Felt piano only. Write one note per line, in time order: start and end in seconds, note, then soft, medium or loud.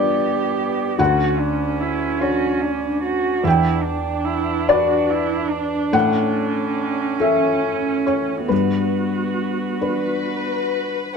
0.00 0.95 G2 soft
0.00 0.95 D4 soft
0.00 0.95 B4 soft
0.00 0.15 D5 medium
0.00 0.99 F#5 medium
0.99 3.41 D2 soft
0.99 3.41 F#5 medium
2.21 3.41 D4 soft
2.21 3.41 C#5 soft
3.43 5.89 E2 soft
3.43 4.66 G5 medium
4.69 5.90 D4 soft
4.69 5.90 B4 soft
4.69 5.90 D5 medium
5.93 8.46 A2 soft
5.93 7.16 F#5 medium
7.20 8.46 C#4 soft
7.20 8.46 A4 soft
7.20 8.03 E5 medium
8.07 8.47 C#5 medium
8.48 11.12 G2 soft
8.48 9.77 B4 soft
9.81 11.12 D4 soft
9.81 11.13 B4 soft